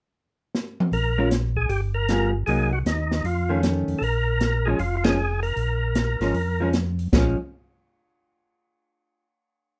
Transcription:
0.55 snare
0.80 mid tom
0.92 A#1 A#4, open hi-hat
1.18 G#3 C#4 F4
1.31 snare, closed hi-hat
1.56 G#4, kick
1.69 G1 G4, open hi-hat
1.94 A#4
2.09 G3 B3 F4 G#4, snare, closed hi-hat
2.46 C2 F#3 A#3 D#4 G#4, open hi-hat
2.73 F#4
2.85 D#2 D#4, snare, closed hi-hat
3.11 snare
3.24 F2 F4, open hi-hat
3.49 D#3 A3 C#4
3.63 snare, closed hi-hat
3.88 F2, open hi-hat
3.99 A#1 A4
4.03 A#4, open hi-hat
4.41 snare, closed hi-hat
4.65 F3 G#3 C#4 G#4
4.79 F1 F4, open hi-hat
4.97 F4
5.04 F3 G#3 C#4 G#4, snare, ride
5.43 A#4, open hi-hat
5.56 A#1, open hi-hat
5.95 snare, closed hi-hat
6.20 G#1 F3 G#3 C#4, snare, open hi-hat
6.34 F2, open hi-hat
6.60 F3 G#3 C#4
6.73 snare, closed hi-hat
6.99 open hi-hat
7.12 A#1 F3 G#3 C#4, kick, snare, crash

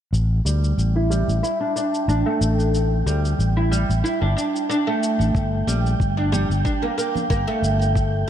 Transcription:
0.13 A1 G5, shaker
0.45 D2 G3, shaker
0.64 shaker
0.78 A1, shaker
0.96 E4
1.10 G3, shaker
1.28 A1, shaker
1.43 E4, shaker
1.60 D4
1.76 D4, shaker
1.94 shaker
2.08 A1 D4, shaker
2.26 A3
2.41 A1, shaker
2.60 shaker
2.74 shaker
3.06 D2 G3, shaker
3.25 shaker
3.39 A1, shaker
3.57 E4
3.71 G3, shaker
3.89 A1, shaker
4.04 E4, shaker
4.22 G1 D4
4.37 D4, shaker
4.56 shaker
4.69 D4, shaker
4.87 A3
5.03 shaker
5.20 A1, shaker
5.35 kick, shaker
5.67 A#1 G3, high conga, shaker
5.86 shaker
6.00 G1, kick, shaker
6.17 D4
6.32 G3, high conga, low conga, shaker
6.50 G1, shaker
6.65 D4, kick, shaker
6.83 A#3, muted conga, high conga
6.98 A#3, muted conga, shaker
7.16 high conga, low conga, shaker
7.30 G1 A#3, kick, shaker
7.47 A3
7.62 G1, shaker
7.82 shaker
7.95 kick, shaker

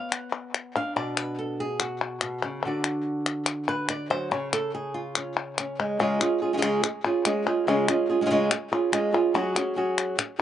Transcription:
Already playing: B3 F5
0.12 F#5, clap
0.32 clap
0.54 clap
0.75 D4 F5, clap
0.96 B2 D5
1.17 B4, clap
1.39 A4
1.60 G#4
1.80 F#4, clap
2.01 clap
2.21 B2, clap
2.43 C#3
2.65 D3 D4 F#4 D5
2.84 clap
3.26 clap
3.46 clap
3.69 B4
3.89 D5, clap
4.10 F#3 C5
4.31 C#3 C#5
4.53 A4, clap
4.75 G#4
4.94 F4
5.15 C#4, clap
5.58 C#4, clap
5.79 G#3
5.99 C#3 G#3 C#4 F4 G#4
6.20 C#4 F4 G#4, clap
6.42 C#4 F4 G#4
6.53 G#3 C#4 F4 G#4
6.57 G#3 C#4 F4 G#4
6.62 C#3 G#3 C#4 F4 G#4, clap
6.83 muted nylon-string guitar stroke, clap
7.04 C#4 F4 G#4, clap
7.25 G#3 C#4 F4 G#4, clap
7.46 C#4 F4 G#4, clap
7.67 C#3 G#3 C#4 F4 G#4
7.88 C#4 F4 G#4, clap
8.10 C#4 F4 G#4
8.21 G#3 C#4 F4 G#4
8.26 G#3 C#4 F4 G#4
8.31 C#3 G#3 C#4 F4 G#4
8.51 muted nylon-string guitar stroke, clap
8.72 C#4 F4 G#4, clap
8.92 G#3 C#4 F4 G#4, clap
9.13 C#4 F4 G#4, clap
9.34 F#3 C#4 F#4 G#4
9.55 C#4 F#4 G#4, clap
9.76 F#3 C#4 F#4 G#4
9.98 clap
10.18 muted nylon-string guitar stroke, clap
10.39 G#4

